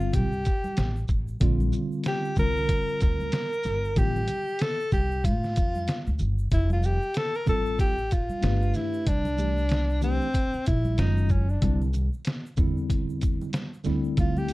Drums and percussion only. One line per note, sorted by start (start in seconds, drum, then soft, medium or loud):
0.00 shaker soft
0.13 kick medium
0.13 closed hi-hat medium
0.13 shaker medium
0.32 shaker soft
0.45 kick medium
0.45 closed hi-hat medium
0.45 shaker medium
0.64 high conga medium
0.64 shaker soft
0.77 snare loud
0.77 closed hi-hat medium
0.77 shaker medium
0.96 shaker soft
1.08 kick medium
1.08 low conga soft
1.08 shaker soft
1.28 shaker soft
1.40 kick loud
1.40 closed hi-hat medium
1.40 shaker medium
1.60 high conga medium
1.60 shaker soft
1.72 low conga medium
1.72 shaker soft
1.92 shaker soft
2.04 snare loud
2.04 closed hi-hat medium
2.04 shaker medium
2.25 shaker soft
2.36 kick medium
2.36 high conga medium
2.36 low conga medium
2.36 shaker medium
2.37 shaker medium
2.57 shaker soft
2.69 kick medium
2.69 closed hi-hat medium
2.69 shaker medium
2.89 shaker soft
3.00 kick medium
3.00 closed hi-hat medium
3.00 shaker medium
3.00 shaker soft
3.20 high conga medium
3.20 shaker soft
3.32 snare loud
3.32 closed hi-hat medium
3.32 shaker medium
3.53 shaker soft
3.63 low conga soft
3.63 shaker medium
3.65 snare soft
3.65 shaker soft
3.84 shaker soft
3.96 kick medium
3.96 closed hi-hat medium
3.96 shaker medium
4.16 high conga medium
4.16 shaker soft
4.28 closed hi-hat medium
4.28 low conga medium
4.28 shaker medium
4.28 shaker soft
4.48 shaker soft
4.59 snare loud
4.59 closed hi-hat medium
4.59 shaker medium
4.80 shaker soft
4.91 kick medium
4.91 high conga medium
4.91 low conga medium
4.91 shaker soft
4.91 shaker medium
5.11 shaker soft
5.24 kick loud
5.24 closed hi-hat medium
5.24 shaker medium
5.43 snare soft
5.43 shaker soft
5.56 kick medium
5.56 closed hi-hat medium
5.56 shaker soft
5.56 shaker medium
5.75 high conga medium
5.75 shaker soft
5.88 snare loud
5.88 closed hi-hat medium
5.88 shaker medium
6.07 shaker soft
6.19 low conga medium
6.19 shaker soft
6.38 shaker medium
6.51 kick loud
6.51 closed hi-hat medium
6.51 shaker soft
6.70 high conga medium
6.70 shaker soft
6.82 low conga medium
6.82 shaker soft
6.82 shaker medium
7.02 shaker soft
7.14 snare loud
7.14 closed hi-hat medium
7.14 shaker medium
7.34 shaker soft
7.47 kick medium
7.47 low conga medium
7.47 shaker medium
7.66 shaker soft
7.79 kick loud
7.79 closed hi-hat medium
7.79 shaker medium
7.98 shaker soft
8.11 kick medium
8.11 closed hi-hat medium
8.11 shaker soft
8.11 shaker medium
8.29 high conga medium
8.29 shaker soft
8.43 snare loud
8.43 closed hi-hat medium
8.43 shaker medium
8.62 shaker soft
8.74 snare soft
8.74 low conga soft
8.74 shaker soft
8.94 shaker soft
9.06 kick medium
9.06 closed hi-hat medium
9.06 shaker medium
9.25 high conga medium
9.25 shaker soft
9.38 low conga medium
9.38 shaker medium
9.38 shaker soft
9.58 shaker soft
9.69 snare loud
9.69 closed hi-hat medium
9.69 shaker medium
9.90 shaker soft
10.02 low conga medium
10.02 shaker soft
10.02 shaker medium
10.21 shaker soft
10.34 kick medium
10.34 closed hi-hat medium
10.34 shaker medium
10.53 shaker soft
10.65 kick medium
10.65 closed hi-hat medium
10.65 shaker medium
10.85 high conga medium
10.85 shaker soft
10.98 snare loud
10.98 closed hi-hat medium
10.98 shaker medium
11.17 shaker soft
11.29 kick medium
11.29 low conga soft
11.29 shaker soft
11.49 shaker soft
11.62 kick loud
11.62 closed hi-hat medium
11.62 shaker medium
11.82 high conga medium
11.82 shaker soft
11.93 low conga medium
11.93 shaker medium
11.93 shaker soft
12.13 shaker soft
12.25 snare loud
12.25 closed hi-hat medium
12.25 shaker medium
12.46 shaker soft
12.57 kick medium
12.57 low conga medium
12.57 shaker medium
12.77 shaker soft
12.90 kick medium
12.90 closed hi-hat medium
12.90 shaker medium
13.09 shaker soft
13.21 kick medium
13.21 closed hi-hat medium
13.21 shaker medium
13.41 high conga medium
13.41 shaker soft
13.53 snare loud
13.53 closed hi-hat medium
13.53 shaker medium
13.74 shaker soft
13.84 low conga soft
13.84 shaker soft
13.86 snare soft
13.86 shaker soft
14.04 shaker medium
14.17 kick loud
14.17 closed hi-hat medium
14.17 shaker medium
14.37 high conga medium
14.37 shaker soft
14.49 closed hi-hat medium
14.49 low conga medium
14.49 shaker medium
14.49 shaker soft